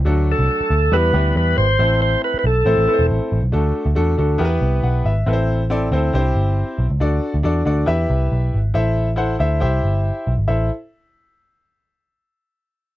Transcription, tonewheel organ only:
0.32 0.97 A4 medium
0.93 1.36 B4 loud
1.37 1.57 B4 loud
1.58 2.01 C5 loud
2.02 2.22 C5 medium
2.24 2.38 B4 medium
2.39 2.45 B4 medium
2.47 3.07 A4 medium

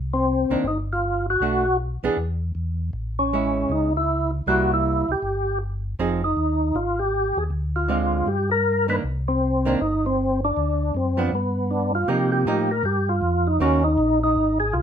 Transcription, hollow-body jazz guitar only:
0.51 0.63 D#3 soft
0.51 0.64 A#3 medium
0.51 0.64 D4 medium
1.42 1.63 A3 soft
1.42 1.63 D4 soft
1.42 1.64 F#4 soft
2.04 2.16 E3 medium
2.04 2.16 B3 medium
2.04 2.16 D4 medium
2.04 2.17 G#4 soft
3.33 3.90 G#3 soft
3.33 3.90 C#4 soft
3.33 3.91 E4 soft
4.47 5.04 G3 soft
4.47 5.04 A#3 medium
4.47 5.05 E4 medium
5.99 6.21 F3 medium
5.99 6.21 C4 soft
5.99 6.21 D#4 soft
5.99 6.21 G#4 medium
7.88 8.27 D3 soft
7.88 8.27 G#3 soft
7.88 8.27 C4 soft
7.88 8.28 F4 soft
8.88 9.01 D#3 soft
8.88 9.02 A#3 medium
8.88 9.02 D4 soft
9.65 9.78 D#3 medium
9.65 9.79 A#3 medium
9.65 9.79 D4 medium
11.17 11.30 F3 medium
11.17 11.31 B3 medium
11.17 11.31 D4 medium
12.08 12.45 F3 soft
12.08 12.45 A#3 medium
12.08 12.45 D#4 medium
12.47 12.68 F3 soft
12.47 12.68 A#3 medium
12.47 12.69 D#4 medium
13.60 13.82 D#3 medium
13.60 13.82 A#3 medium
13.60 13.83 C#4 medium
13.60 13.83 F#4 medium

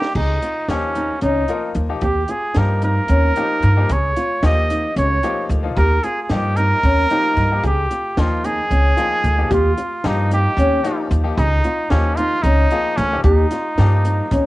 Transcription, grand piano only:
0.70 1.42 F3 medium
0.70 1.42 A#3 medium
0.70 1.43 D#4 medium
0.70 1.43 G4 medium
1.50 1.86 F3 medium
1.50 1.86 A#3 medium
1.50 1.86 D#4 medium
1.50 1.86 A#4 medium
1.89 2.02 F3 medium
1.89 2.02 A#3 medium
1.89 2.03 D#4 medium
1.89 2.03 G4 medium
2.56 3.29 F3 medium
2.56 3.29 A#3 medium
2.56 3.29 D#4 medium
2.56 3.30 G4 medium
3.36 3.73 F3 medium
3.36 3.73 A#3 medium
3.36 3.73 D#4 medium
3.36 3.73 G4 medium
3.76 3.90 F3 medium
3.76 3.90 A#3 medium
3.76 3.90 D#4 medium
3.76 3.90 G4 medium
4.42 5.16 F3 medium
4.42 5.16 A#3 medium
4.42 5.16 D#4 medium
4.42 5.17 G4 medium
5.23 5.60 F3 medium
5.23 5.60 A#3 medium
5.23 5.60 D#4 medium
5.23 5.60 G4 medium
5.63 5.76 F3 medium
5.63 5.77 A#3 medium
5.63 5.77 D#4 medium
5.63 5.77 F4 medium
6.30 7.04 F3 medium
6.30 7.04 A#3 medium
6.30 7.04 D#4 medium
6.30 7.04 G4 medium
7.11 7.47 F3 medium
7.11 7.48 A#3 medium
7.11 7.48 D#4 medium
7.11 7.48 G4 medium
7.51 7.64 F3 medium
7.51 7.64 A#3 medium
7.51 7.64 D#4 medium
7.51 7.65 G4 medium
8.18 8.91 F3 medium
8.18 8.91 A#3 medium
8.18 8.91 D#4 medium
8.18 8.91 G5 medium
8.97 9.34 F3 medium
8.97 9.34 A#3 medium
8.97 9.35 D#4 medium
8.97 9.34 G5 medium
9.38 9.51 F3 medium
9.38 9.51 A#3 medium
9.38 9.51 D#4 medium
9.38 9.52 G4 medium
10.04 10.78 F3 medium
10.04 10.78 A#3 medium
10.04 10.78 D#4 medium
10.04 10.78 G4 medium
10.84 11.21 F3 medium
10.84 11.21 A#3 medium
10.84 11.21 D#4 medium
10.84 11.21 G4 medium
11.23 11.37 F3 medium
11.23 11.37 A#3 medium
11.23 11.37 D#4 medium
11.23 11.38 G4 medium
11.91 12.64 F3 medium
11.91 12.64 A#3 medium
11.91 12.64 D#4 medium
11.91 12.64 G4 medium
12.72 13.08 F3 medium
12.72 13.08 A#3 medium
12.72 13.08 D#4 medium
12.72 13.08 G#4 medium
13.12 13.25 F3 medium
13.12 13.25 A#3 medium
13.12 13.25 D#4 medium
13.12 13.25 G4 medium
13.79 14.46 F3 medium
13.79 14.46 A#3 medium
13.79 14.46 D#4 medium
13.79 14.46 G4 medium

